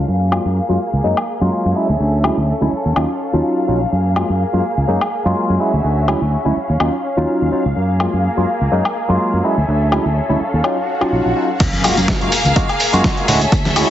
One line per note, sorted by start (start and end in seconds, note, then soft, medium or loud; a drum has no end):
0.00 1.73 F5 medium
0.08 0.37 F#2 medium
0.08 1.75 A#3 medium
0.08 2.70 G#4 medium
0.32 0.43 F#3 medium
0.32 0.43 G#3 medium
0.32 0.43 A#3 medium
0.32 0.44 F4 medium
0.32 high woodblock medium
0.45 0.59 F#2 medium
0.69 0.76 F#2 medium
0.69 0.78 F#3 medium
0.69 0.79 G#3 medium
0.69 0.79 A#3 medium
0.69 0.79 F4 medium
0.93 1.00 C#2 medium
1.04 1.12 F#2 medium
1.04 1.15 F#3 medium
1.04 1.15 G#3 medium
1.04 1.16 A#3 medium
1.04 1.16 D#4 medium
1.17 high woodblock medium
1.41 1.48 F#2 medium
1.41 1.73 F#3 medium
1.41 1.73 G#3 medium
1.41 1.74 A#3 medium
1.41 1.74 F4 medium
1.65 1.72 F#2 medium
1.76 1.87 F#3 medium
1.76 1.87 G#3 medium
1.76 3.90 C#4 medium
1.76 1.88 C#4 medium
1.76 1.88 E4 medium
1.76 3.90 A4 medium
1.76 2.71 E5 medium
1.89 1.96 D2 medium
2.00 2.29 D2 medium
2.24 2.35 F#3 medium
2.24 2.35 G#3 medium
2.24 2.36 C#4 medium
2.24 2.36 E4 medium
2.24 high woodblock medium
2.37 2.51 D2 medium
2.61 2.68 D2 medium
2.61 2.70 F#3 medium
2.61 2.71 G#3 medium
2.61 2.71 C#4 medium
2.61 2.71 E4 medium
2.72 5.57 F5 medium
2.72 muted fingered electric bass stroke soft
2.85 2.92 D#2 medium
2.96 3.04 D#2 medium
2.96 3.07 F#3 medium
2.96 3.07 C#4 medium
2.96 3.07 D#4 medium
2.96 3.08 F4 medium
2.96 high woodblock medium
3.33 3.40 D#2 medium
3.33 3.65 F#3 medium
3.33 3.65 C#4 medium
3.33 3.66 D#4 medium
3.33 3.66 F4 medium
3.68 3.84 A#1 medium
3.68 3.79 F#3 medium
3.68 3.79 C#4 medium
3.68 3.79 D#4 medium
3.68 3.80 F4 medium
3.92 4.21 F#2 medium
3.92 5.58 A#3 medium
3.92 6.53 G#4 medium
4.16 4.27 F#3 medium
4.16 4.27 G#3 medium
4.16 4.28 A#3 medium
4.16 4.28 F4 medium
4.16 high woodblock medium
4.30 4.43 F#2 medium
4.53 4.60 F#2 medium
4.53 4.62 F#3 medium
4.53 4.63 G#3 medium
4.53 4.63 A#3 medium
4.53 4.63 F4 medium
4.77 4.84 C#2 medium
4.88 4.96 F#2 medium
4.88 4.99 F#3 medium
4.88 4.99 G#3 medium
4.88 4.99 A#3 medium
4.88 5.00 D#4 medium
5.01 high woodblock medium
5.25 5.32 F#2 medium
5.25 5.57 F#3 medium
5.25 5.57 G#3 medium
5.25 5.58 A#3 medium
5.25 5.58 F4 medium
5.50 5.56 F#2 medium
5.60 5.71 F#3 medium
5.60 5.71 G#3 medium
5.60 7.74 C#4 medium
5.60 5.72 C#4 medium
5.60 5.72 E4 medium
5.60 6.55 F#4 medium
5.60 6.55 E5 medium
5.73 5.80 D2 medium
5.84 6.13 D2 medium
6.08 6.19 F#3 medium
6.08 6.19 G#3 medium
6.08 6.19 C#4 medium
6.08 6.20 E4 medium
6.08 high woodblock medium
6.21 6.35 D2 medium
6.45 6.52 D2 medium
6.45 6.54 F#3 medium
6.45 6.54 G#3 medium
6.45 6.55 C#4 medium
6.45 6.55 E4 medium
6.56 9.41 F5 medium
6.56 muted fingered electric bass stroke soft
6.69 6.76 D#2 medium
6.80 6.88 D#2 medium
6.80 6.91 F#3 medium
6.80 6.91 C#4 medium
6.80 6.91 D#4 medium
6.80 6.92 F4 medium
6.80 high woodblock medium
7.17 7.24 D#2 medium
7.17 7.49 F#3 medium
7.17 7.49 C#4 medium
7.17 7.50 D#4 medium
7.17 7.50 F4 medium
7.42 7.48 D#2 medium
7.52 7.63 F#3 medium
7.52 7.63 C#4 medium
7.52 7.64 D#4 medium
7.52 7.64 F4 medium
7.52 muted fingered electric bass stroke soft
7.65 7.72 C#2 medium
7.76 8.05 F#2 medium
7.76 9.43 A#3 medium
7.76 9.42 G#4 medium
8.00 8.11 F#3 medium
8.00 8.11 G#3 medium
8.00 8.12 A#3 medium
8.00 8.12 F4 medium
8.00 high woodblock medium
8.13 8.27 F#2 medium
8.37 8.44 F#2 medium
8.37 8.46 F#3 medium
8.37 8.46 G#3 medium
8.37 8.47 A#3 medium
8.37 8.47 F4 medium
8.61 8.68 C#2 medium
8.72 8.80 F#2 medium
8.72 8.83 F#3 medium
8.72 8.83 G#3 medium
8.72 8.83 A#3 medium
8.72 8.84 D#4 loud
8.85 high woodblock medium
9.09 9.16 F#2 medium
9.09 9.41 F#3 medium
9.09 9.41 G#3 medium
9.09 9.42 A#3 medium
9.09 9.42 F4 medium
9.33 9.40 F#2 medium
9.44 9.55 F#3 medium
9.44 9.55 G#3 medium
9.44 11.58 C#4 medium
9.44 9.56 C#4 medium
9.44 9.56 E4 medium
9.44 10.39 G#4 medium
9.44 11.58 A4 medium
9.44 10.39 E5 medium
9.57 9.64 D2 medium
9.68 9.97 D2 medium
9.92 10.03 F#3 medium
9.92 10.03 G#3 medium
9.92 10.04 C#4 medium
9.92 10.04 E4 medium
9.92 high woodblock medium
10.05 10.19 D2 medium
10.29 10.36 D2 medium
10.29 10.38 F#3 medium
10.29 10.39 G#3 medium
10.29 10.39 C#4 medium
10.29 10.39 E4 medium
10.40 11.59 F5 medium
10.40 muted fingered electric bass stroke soft
10.54 10.60 D#2 medium
10.64 10.75 F#3 medium
10.64 10.75 C#4 medium
10.64 10.75 D#4 medium
10.64 10.76 F4 loud
10.64 swell medium
10.64 high woodblock medium
11.01 11.33 F#3 medium
11.01 11.33 C#4 medium
11.01 11.34 D#4 medium
11.01 11.34 F4 loud
11.01 muted fingered electric bass stroke soft
11.01 high woodblock medium
11.12 11.20 A#1 medium
11.25 11.32 A#1 medium
11.36 11.47 F#3 medium
11.36 11.47 C#4 medium
11.36 11.48 D#4 medium
11.36 11.48 F4 medium
11.60 11.89 F#2 loud
11.60 13.26 A#3 medium
11.60 13.90 G#4 medium
11.60 13.26 F5 medium
11.60 kick loud
11.60 closed hi-hat medium
11.60 crash loud
11.60 tambourine soft
11.60 impact medium
11.73 closed hi-hat soft
11.73 high conga medium
11.84 11.95 G#3 medium
11.84 11.95 A#3 medium
11.84 11.96 F4 medium
11.84 11.96 F#4 loud
11.84 open hi-hat loud
11.84 tambourine medium
11.84 high woodblock medium
11.97 12.11 F#2 loud
11.97 closed hi-hat medium
11.97 tambourine medium
12.08 kick loud
12.08 snare loud
12.08 closed hi-hat medium
12.21 12.28 F#2 medium
12.21 12.30 G#3 medium
12.21 12.30 A#3 medium
12.21 12.31 F4 medium
12.21 12.31 F#4 medium
12.21 closed hi-hat soft
12.32 open hi-hat loud
12.32 tambourine loud
12.45 12.52 C#2 medium
12.45 closed hi-hat medium
12.45 tambourine medium
12.45 high conga medium
12.56 12.67 G#3 medium
12.56 12.67 A#3 medium
12.56 12.67 F4 medium
12.56 12.68 F#4 loud
12.56 kick loud
12.56 closed hi-hat medium
12.56 tambourine soft
12.69 closed hi-hat soft
12.69 high woodblock medium
12.80 open hi-hat loud
12.80 tambourine loud
12.93 13.00 F#2 loud
12.93 13.25 G#3 medium
12.93 13.25 A#3 medium
12.93 13.26 F4 medium
12.93 13.26 F#4 loud
12.93 closed hi-hat medium
12.93 tambourine medium
13.04 kick loud
13.04 snare loud
13.04 closed hi-hat medium
13.04 tambourine soft
13.04 high conga medium
13.17 closed hi-hat soft
13.28 13.44 D2 medium
13.28 13.39 G#3 medium
13.28 13.90 C#4 medium
13.28 13.39 C#4 medium
13.28 13.40 E4 medium
13.28 13.40 F#4 medium
13.28 13.90 A4 medium
13.28 13.90 E5 medium
13.28 open hi-hat loud
13.28 tambourine loud
13.28 low conga medium
13.41 closed hi-hat medium
13.41 tambourine medium
13.52 13.81 D2 medium
13.52 kick loud
13.52 closed hi-hat medium
13.52 tambourine soft
13.65 snare soft
13.65 closed hi-hat soft
13.65 high conga loud
13.76 13.87 G#3 medium
13.76 13.87 C#4 medium
13.76 13.87 E4 medium
13.76 13.88 F#4 loud
13.76 open hi-hat loud
13.76 tambourine medium
13.76 high woodblock medium